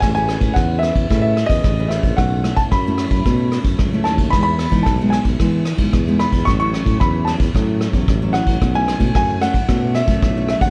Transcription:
<<
  \new Staff \with { instrumentName = "Grand piano" } { \time 4/4 \key a \lydian \tempo 4 = 112 gis''16 gis''8. fis''8 e''8. e''8 dis''8. e''8 | fis''8. a''16 b''2 r8 a''8 | b''16 b''8. a''8 gis''8 r4. b''8 | cis'''16 cis'''8. b''8 a''8 r4. fis''8~ |
fis''16 gis''8. gis''8 fis''4 e''4 e''16 fis''16 | }
  \new Staff \with { instrumentName = "Nylon-string guitar" } { \time 4/4 \key a \lydian << { <cis' gis' b'>16 <cis' gis' b'>8 <cis' gis' b'>8. <cis' gis' b'>8 <cis' gis' b'>8 r16 <cis' gis' b'>8 <cis' gis' b'>8. | <a cis' e'>8 <a cis' e'>8 r16 <a cis' e'>8. <a cis' e'>8 <a cis' e'>8. <a cis' e'>8. | <gis b dis'>8 r16 <gis b dis'>8 <gis b dis'>8. <gis b dis'>8 r16 <gis b dis'>8 <gis b dis'>8. | <fis cis' e'>16 <fis cis' e'>8 <fis cis' e'>8. <fis cis' e'>16 r16 <fis cis' e'>8. <fis cis' e'>8 <fis cis' e'>8. |
<a cis' e'>16 <a cis' e'>8 <a cis' e'>8. <a cis' e'>16 r16 <a cis' e'>8. <a cis' e'>8 <a cis' e'>8. | } \\ { a4 e4 a4 e4 | b,4 fis4 b,4 fis4 | e4 b,4 e4 b,4 | a,4 e4 a,4 e4 |
b,4 fis4 b,4 fis4 | } >> }
  \new Staff \with { instrumentName = "Tuba" } { \clef bass \time 4/4 \key a \lydian a,,8. a,16 e,8. e,16 a,8. e,16 a,,8. ais,,16 | b,,8. r16 fis,8. fis,16 b,8. fis,16 cis,8 dis,8 | e,8. e16 b,,8. b,,16 e8. b,,16 e,8. e,16 | a,,8. a,16 e,8. e,16 a,8. e,16 a,,8. a,,16 |
b,,8. b,16 fis,8. r16 b,8. fis,16 b,,8. dis,16 | }
  \new DrumStaff \with { instrumentName = "Drums" } \drummode { \time 4/4 <bd cymr ss>8 <cymr ss>16 <bd cymr>16 <bd cymr ss>8 <cymr ss>16 <bd cymr>16 <bd cymr ss>8 <cymr ss>16 <bd cymr>16 <bd cymr ss>8 <cymr ss>16 <bd cymr>16 | <bd cymr ss>8 <cymr ss>16 <bd cymr>16 <bd cymr ss>8 <cymr ss>16 <bd cymr>16 <bd cymr ss>8 <cymr ss>16 <bd cymr>16 <bd cymr ss>8 <cymr ss>16 <bd cymr>16 | <bd cymr ss>8 <cymr ss>16 <bd cymr>16 <bd cymr ss>8 <cymr ss>16 <bd cymr>16 <bd cymr ss>8 <cymr ss>16 <bd cymr>16 <bd cymr ss>8 <cymr ss>16 <bd cymr>16 | <bd cymr ss>8 <cymr ss>16 <bd cymr>16 <bd cymr ss>8 <cymr ss>16 <bd cymr>16 <bd cymr ss>8 <cymr ss>16 <bd cymr>16 <bd cymr ss>8 <cymr ss>16 <bd cymr>16 |
<bd cymr ss>8 <cymr ss>16 <bd cymr>16 <bd cymr ss>8 <cymr ss>16 <bd cymr>16 <bd cymr ss>8 <cymr ss>16 <bd cymr>16 <bd cymr ss>8 <cymr ss>16 <bd cymr>16 | }
>>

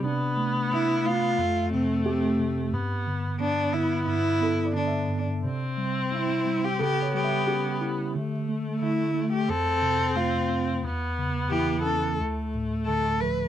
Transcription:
<<
  \new Staff \with { instrumentName = "Felt piano" } { \time 4/4 \key g \mixolydian \tempo 4 = 89 d'4.~ d'16 r4 r16 g'4~ | g'8 r2 a'16 d''16 e''4~ | e''8. r4 r16 a'16 cis''16 e''8 g'4~ | g'8 r2. r8 |
r4 e'4. r4. | }
  \new Staff \with { instrumentName = "Cello" } { \time 4/4 \key g \mixolydian r4 e'8 f'4 c'8 c'8. r16 | r4 d'8 e'8 e'4 d'8. r16 | r4 e'8. g'16 g'8 g'4 r8 | r4 e'8. g'16 a'4 f'8. r16 |
r4 g'8 a'8 r4 a'8 b'8 | }
  \new Staff \with { instrumentName = "Viola" } { \time 4/4 \key g \mixolydian b2 a2 | b4 b2~ b8 r8 | c'2 b2 | a2 c'2 |
b2 a2 | }
  \new Staff \with { instrumentName = "Tine electric piano" } { \clef bass \time 4/4 \key g \mixolydian c8 a4 a8 f,8 c8 a8 c8 | g,8 d8 b8 d8 g,8 b8 d8 g,8 | c8 g8 c'8 g8 cis8 g8 cis'8 e'8 | d8 a8 d8 a8 f,8 c8 a8 c'8 |
e,8 cis8 e8 cis'8 d,8 a,8 d8 f8 | }
>>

